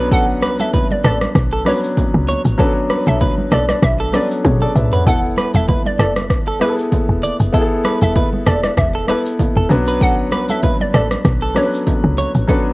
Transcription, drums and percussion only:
0.12 kick loud
0.12 shaker medium
0.42 cross-stick loud
0.42 high conga medium
0.42 shaker medium
0.59 high conga medium
0.59 shaker medium
0.74 kick loud
0.74 low conga medium
0.74 shaker medium
0.91 high conga medium
1.04 cross-stick loud
1.04 low conga medium
1.04 shaker medium
1.21 cross-stick medium
1.21 high conga medium
1.21 shaker medium
1.35 kick loud
1.35 cross-stick medium
1.35 shaker medium
1.66 cross-stick medium
1.66 open hi-hat medium
1.66 high conga medium
1.66 shaker medium
1.84 shaker medium
1.97 kick medium
1.97 low conga medium
1.97 shaker medium
2.28 low conga medium
2.28 shaker medium
2.45 shaker medium
2.59 kick loud
2.59 shaker medium
2.90 cross-stick loud
2.90 open hi-hat medium
2.90 high conga medium
2.90 shaker medium
3.06 high conga medium
3.06 shaker medium
3.21 kick loud
3.21 low conga medium
3.21 shaker medium
3.38 high conga medium
3.52 cross-stick medium
3.52 low conga medium
3.52 shaker medium
3.69 cross-stick medium
3.69 high conga medium
3.69 shaker medium
3.83 kick loud
3.83 cross-stick loud
3.83 shaker medium
4.13 cross-stick medium
4.13 open hi-hat medium
4.13 high conga medium
4.13 shaker medium
4.31 shaker medium
4.45 kick loud
4.45 high tom medium
4.45 low conga medium
4.45 shaker medium
4.76 mid tom medium
4.76 low conga medium
4.76 shaker medium
4.92 floor tom loud
4.92 shaker medium
5.06 kick loud
5.06 shaker medium
5.37 cross-stick medium
5.37 high conga medium
5.37 shaker medium
5.54 high conga medium
5.54 shaker medium
5.68 kick loud
5.68 low conga medium
5.68 shaker medium
5.85 high conga medium
5.99 cross-stick loud
5.99 low conga medium
5.99 shaker medium
6.16 cross-stick medium
6.16 high conga medium
6.16 shaker medium
6.30 kick loud
6.30 cross-stick medium
6.30 shaker medium
6.61 cross-stick medium
6.61 open hi-hat medium
6.61 high conga medium
6.61 shaker medium
6.79 shaker medium
6.92 kick loud
6.92 low conga medium
6.92 shaker medium
7.23 low conga medium
7.23 shaker medium
7.40 shaker medium
7.54 kick loud
7.54 shaker medium
7.84 cross-stick loud
7.84 high conga medium
7.84 shaker medium
8.01 high conga medium
8.01 shaker medium
8.16 kick loud
8.16 low conga medium
8.16 shaker medium
8.33 high conga medium
8.47 cross-stick loud
8.47 low conga medium
8.47 shaker medium
8.64 cross-stick loud
8.64 high conga medium
8.64 shaker medium
8.77 kick loud
8.77 cross-stick medium
8.77 shaker medium
9.08 cross-stick medium
9.08 open hi-hat medium
9.08 high conga medium
9.08 shaker medium
9.26 shaker medium
9.39 kick medium
9.39 low conga medium
9.39 shaker medium
9.71 low conga medium
9.71 shaker medium
9.87 shaker medium
10.01 kick loud
10.01 shaker medium
10.32 cross-stick loud
10.32 high conga medium
10.32 shaker medium
10.49 high conga medium
10.49 shaker medium
10.63 kick loud
10.63 low conga medium
10.63 shaker medium
10.80 high conga medium
10.94 cross-stick loud
10.94 low conga medium
10.94 shaker medium
11.11 cross-stick medium
11.11 high conga medium
11.11 shaker medium
11.25 kick loud
11.25 cross-stick medium
11.25 shaker medium
11.55 cross-stick medium
11.55 open hi-hat medium
11.55 high conga medium
11.55 shaker medium
11.74 shaker medium
11.87 kick loud
11.87 low conga medium
11.87 shaker medium
12.18 low conga medium
12.18 shaker medium
12.35 shaker medium
12.49 kick loud
12.49 shaker medium

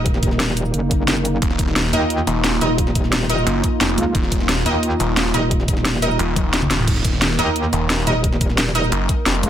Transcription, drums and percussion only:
0.06 kick loud
0.06 closed hi-hat medium
0.14 snare soft
0.23 kick loud
0.23 closed hi-hat medium
0.23 shaker medium
0.31 snare soft
0.40 snare loud
0.40 closed hi-hat medium
0.57 closed hi-hat medium
0.57 shaker medium
0.65 shaker soft
0.74 closed hi-hat medium
0.91 kick loud
0.91 closed hi-hat medium
0.91 shaker medium
1.08 snare loud
1.08 closed hi-hat medium
1.16 snare soft
1.16 shaker soft
1.25 closed hi-hat medium
1.25 shaker medium
1.42 kick loud
1.42 closed hi-hat medium
1.51 snare soft
1.59 kick loud
1.59 closed hi-hat medium
1.59 shaker medium
1.68 snare soft
1.76 snare loud
1.76 closed hi-hat medium
1.93 closed hi-hat medium
1.93 shaker medium
2.10 closed hi-hat medium
2.27 closed hi-hat medium
2.27 shaker medium
2.44 snare loud
2.44 closed hi-hat medium
2.61 closed hi-hat medium
2.61 shaker medium
2.78 kick loud
2.78 closed hi-hat medium
2.87 snare soft
2.95 kick loud
2.95 closed hi-hat medium
2.95 shaker medium
3.04 snare soft
3.12 snare loud
3.12 closed hi-hat medium
3.30 closed hi-hat medium
3.30 shaker medium
3.38 shaker soft
3.47 closed hi-hat medium
3.64 kick loud
3.64 closed hi-hat medium
3.64 shaker medium
3.81 snare loud
3.81 closed hi-hat medium
3.89 snare soft
3.89 shaker soft
3.98 closed hi-hat loud
3.98 shaker medium
4.15 kick loud
4.15 closed hi-hat medium
4.23 snare soft
4.32 kick loud
4.32 closed hi-hat medium
4.32 shaker medium
4.40 snare soft
4.49 snare loud
4.49 closed hi-hat medium
4.66 closed hi-hat loud
4.66 shaker medium
4.83 closed hi-hat medium
5.00 closed hi-hat medium
5.00 shaker medium
5.17 snare loud
5.17 closed hi-hat medium
5.34 closed hi-hat loud
5.34 shaker medium
5.51 kick loud
5.51 closed hi-hat medium
5.60 snare soft
5.68 kick loud
5.68 closed hi-hat medium
5.68 shaker medium
5.77 snare soft
5.85 snare loud
5.85 closed hi-hat medium
6.02 closed hi-hat loud
6.02 shaker medium
6.11 shaker soft
6.19 closed hi-hat medium
6.36 kick loud
6.36 closed hi-hat medium
6.36 high tom medium
6.36 shaker medium
6.53 snare loud
6.53 closed hi-hat medium
6.62 kick medium
6.62 snare soft
6.62 mid tom medium
6.62 shaker soft
6.71 snare loud
6.71 closed hi-hat medium
6.71 shaker medium
6.79 mid tom medium
6.88 kick loud
6.88 closed hi-hat medium
6.88 crash medium
6.96 snare soft
7.05 kick loud
7.05 closed hi-hat medium
7.05 shaker medium
7.13 snare soft
7.22 snare loud
7.22 closed hi-hat medium
7.39 closed hi-hat loud
7.39 shaker medium
7.56 closed hi-hat medium
7.73 closed hi-hat medium
7.73 shaker medium
7.90 snare loud
7.90 closed hi-hat medium
8.07 closed hi-hat loud
8.07 shaker medium
8.24 kick loud
8.24 closed hi-hat medium
8.32 snare soft
8.41 kick loud
8.41 closed hi-hat medium
8.41 shaker medium
8.49 snare soft
8.58 snare loud
8.58 closed hi-hat medium
8.75 closed hi-hat medium
8.75 shaker medium
8.84 shaker soft
8.92 closed hi-hat medium
9.09 kick loud
9.09 closed hi-hat medium
9.09 shaker medium
9.26 snare loud
9.26 closed hi-hat medium
9.35 snare soft
9.35 shaker soft
9.43 closed hi-hat medium
9.43 shaker medium

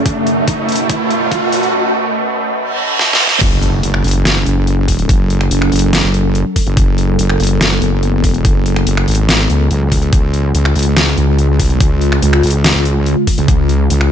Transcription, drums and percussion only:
0.06 kick loud
0.06 closed hi-hat medium
0.27 closed hi-hat medium
0.48 kick loud
0.48 closed hi-hat medium
0.69 closed hi-hat soft
0.72 closed hi-hat medium
0.76 closed hi-hat medium
0.90 kick loud
0.90 closed hi-hat medium
1.11 closed hi-hat medium
1.31 kick loud
1.31 closed hi-hat medium
1.52 open hi-hat medium
1.63 closed hi-hat soft
2.99 snare medium
3.13 snare medium
3.27 snare loud
3.41 kick loud
3.41 closed hi-hat medium
3.41 crash loud
3.62 closed hi-hat medium
3.83 closed hi-hat medium
3.94 finger snap medium
4.04 closed hi-hat medium
4.04 open hi-hat medium
4.11 closed hi-hat medium
4.25 finger snap medium
4.25 snare loud
4.25 closed hi-hat medium
4.46 closed hi-hat medium
4.67 closed hi-hat medium
4.88 kick medium
4.88 open hi-hat loud
4.99 closed hi-hat soft
5.09 kick loud
5.09 closed hi-hat medium
5.30 closed hi-hat medium
5.41 finger snap medium
5.51 closed hi-hat medium
5.62 finger snap medium
5.72 closed hi-hat medium
5.72 open hi-hat medium
5.79 closed hi-hat medium
5.93 snare loud
5.93 closed hi-hat medium
6.14 closed hi-hat medium
6.35 closed hi-hat medium
6.56 kick medium
6.56 open hi-hat loud
6.67 closed hi-hat soft
6.77 kick loud
6.77 closed hi-hat medium
6.98 closed hi-hat medium
7.19 closed hi-hat medium
7.30 finger snap medium
7.40 closed hi-hat medium
7.40 open hi-hat medium
7.47 closed hi-hat medium
7.61 finger snap medium
7.61 snare loud
7.61 closed hi-hat medium
7.82 closed hi-hat medium
8.03 closed hi-hat medium
8.24 kick medium
8.24 open hi-hat medium
8.34 closed hi-hat soft
8.45 kick loud
8.45 closed hi-hat medium
8.66 closed hi-hat medium
8.76 finger snap medium
8.87 closed hi-hat medium
8.97 finger snap medium
9.08 closed hi-hat medium
9.08 open hi-hat medium
9.15 closed hi-hat medium
9.29 snare loud
9.29 closed hi-hat medium
9.50 closed hi-hat medium
9.71 closed hi-hat medium
9.92 kick medium
9.92 open hi-hat medium
10.02 closed hi-hat soft
10.13 kick loud
10.13 closed hi-hat medium
10.34 closed hi-hat medium
10.55 closed hi-hat medium
10.65 finger snap medium
10.76 closed hi-hat medium
10.76 open hi-hat medium
10.83 closed hi-hat medium
10.97 finger snap medium
10.97 snare loud
10.97 closed hi-hat medium
11.18 closed hi-hat medium
11.38 closed hi-hat medium
11.60 kick medium
11.60 open hi-hat medium
11.70 closed hi-hat soft
11.80 kick loud
11.80 closed hi-hat medium
12.01 closed hi-hat medium
12.12 finger snap medium
12.22 closed hi-hat medium
12.33 finger snap medium
12.43 closed hi-hat medium
12.43 open hi-hat medium
12.50 closed hi-hat medium
12.64 snare loud
12.64 closed hi-hat medium
12.85 closed hi-hat medium
13.06 closed hi-hat soft
13.27 kick medium
13.27 open hi-hat medium
13.38 closed hi-hat soft
13.48 kick loud
13.48 closed hi-hat medium
13.69 closed hi-hat medium
13.90 closed hi-hat medium
14.01 finger snap medium

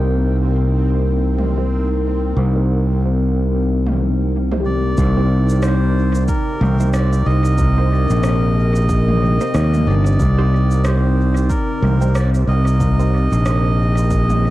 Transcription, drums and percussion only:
1.38 mid tom medium
3.86 mid tom medium
4.52 mid tom medium
4.98 kick loud
4.98 shaker medium
5.49 shaker soft
5.63 cross-stick medium
5.63 shaker medium
6.15 shaker soft
6.28 kick loud
6.28 shaker medium
6.61 mid tom medium
6.80 shaker soft
6.94 cross-stick medium
6.94 shaker medium
7.13 shaker soft
7.45 shaker soft
7.58 kick loud
7.58 shaker medium
8.10 shaker soft
8.24 cross-stick medium
8.24 shaker medium
8.76 shaker soft
8.89 kick loud
8.89 shaker medium
9.08 mid tom medium
9.41 shaker soft
9.55 cross-stick medium
9.55 shaker medium
9.74 mid tom medium
9.74 shaker soft
10.06 shaker soft
10.20 kick loud
10.20 shaker medium
10.71 shaker soft
10.85 cross-stick medium
10.85 shaker medium
11.37 shaker soft
11.50 kick loud
11.50 shaker medium
11.83 mid tom medium
12.02 shaker soft
12.15 cross-stick medium
12.15 shaker medium
12.35 shaker soft
12.67 shaker soft
12.80 kick loud
12.80 shaker medium
13.00 shaker soft
13.32 shaker soft
13.46 cross-stick medium
13.46 shaker soft
13.98 shaker soft
14.11 kick loud
14.11 shaker medium
14.30 mid tom medium
14.30 shaker soft

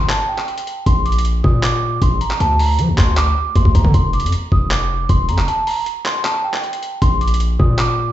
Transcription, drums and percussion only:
0.09 clap loud
0.09 closed hi-hat medium
0.38 clap medium
0.48 closed hi-hat soft
0.58 closed hi-hat medium
0.67 closed hi-hat medium
0.86 kick loud
0.86 closed hi-hat medium
1.06 closed hi-hat medium
1.12 closed hi-hat medium
1.19 closed hi-hat medium
1.25 closed hi-hat medium
1.44 kick loud
1.63 clap loud
1.63 closed hi-hat medium
2.02 kick loud
2.02 closed hi-hat medium
2.21 closed hi-hat medium
2.31 clap medium
2.40 closed hi-hat medium
2.59 open hi-hat medium
2.79 closed hi-hat medium
2.98 kick medium
2.98 clap loud
3.17 clap loud
3.17 closed hi-hat medium
3.56 kick medium
3.56 closed hi-hat medium
3.65 kick medium
3.75 kick loud
3.75 closed hi-hat medium
3.85 kick loud
3.94 kick loud
3.94 closed hi-hat medium
4.13 closed hi-hat medium
4.20 closed hi-hat medium
4.26 closed hi-hat medium
4.32 closed hi-hat medium
4.52 kick medium
4.71 clap loud
4.71 closed hi-hat medium
5.09 kick loud
5.09 closed hi-hat medium
5.29 closed hi-hat medium
5.38 clap medium
5.48 closed hi-hat medium
5.67 open hi-hat medium
5.86 closed hi-hat medium
6.06 clap loud
6.25 clap loud
6.25 closed hi-hat medium
6.54 clap medium
6.63 closed hi-hat soft
6.73 closed hi-hat medium
6.83 closed hi-hat medium
7.02 kick loud
7.02 closed hi-hat medium
7.21 closed hi-hat medium
7.28 closed hi-hat medium
7.34 closed hi-hat medium
7.40 closed hi-hat medium
7.60 kick loud
7.79 clap loud
7.79 closed hi-hat medium

